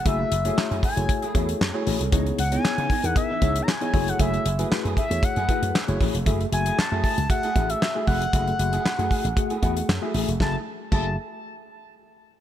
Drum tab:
CC |----------------|----------------|----------------|----------------|
HH |x-xx-xoxxxxx--ox|xxxx-xoxx-xx-xox|xxxx-xxxxxxx-xox|xxxx--oxxxxx--ox|
CP |----x-------x---|----x-------x---|----x-------x---|----x-------x---|
SD |----o-------o---|----o-------o---|----o-------o---|----o-------o---|
BD |o-----o-o-o-----|o-----o-o-o---o-|o-----o-o-o---o-|o-----o-o-o---o-|

CC |----------------|----x-----------|
HH |xxxx-xoxxxxx--ox|----------------|
CP |----x-------x---|----------------|
SD |----o-------o---|o---------------|
BD |o-----o-o-o-----|o---o-----------|